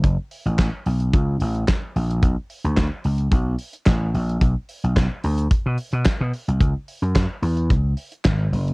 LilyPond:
<<
  \new Staff \with { instrumentName = "Slap bass" } { \clef bass \time 4/4 \key b \dorian \tempo 4 = 110 fis,,16 r8 a,,8 r16 b,,8 cis,8 a,,8 r8 ais,,8 | b,,16 r8 d,8 r16 cis,8 b,,8 r8 a,,8 ais,,8 | b,,16 r8 b,,8 r16 d,8 r16 b,16 r16 b,16 r16 b,16 r16 bis,,16 | cis,16 r8 fis,8 r16 e,8 cis,8 r8 gis,,8 fis,,8 | }
  \new DrumStaff \with { instrumentName = "Drums" } \drummode { \time 4/4 <hh bd>8 hho16 hh16 <hc hh bd sn>8 hho16 hh16 <hh bd>8 hho16 hh16 <hc hh bd sn>8 hho16 hh16 | <hh bd>8 hho16 hh16 <hc hh bd sn>8 hho16 hh16 <hh bd>8 hho16 hh16 <hc hh bd sn>8 hho16 hh16 | <hh bd>8 hho16 hh16 <hc hh bd sn>8 hho16 hh16 <hh bd>8 hho16 hh16 <hc hh bd sn>8 hho16 hh16 | <hh bd>8 hho16 hh16 <hc hh bd sn>8 hho16 hh16 <hh bd>8 hho16 hh16 <hc hh bd sn>8 hho16 hh16 | }
>>